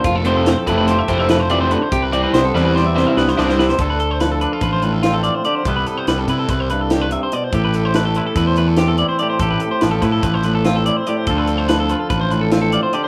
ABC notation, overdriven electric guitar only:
X:1
M:9/8
L:1/8
Q:3/8=96
K:Ddor
V:1 name="Overdriven electric guitar" clef=bass
z [C,F,A,C] z [C,F,A,C] z [C,F,A,C] z [C,F,A,C] z | z [C,G,CE] z [C,G,CE] z [C,G,CE] z [C,G,CE] z | z8 z | z8 z |
z8 z | z8 z | z8 z |]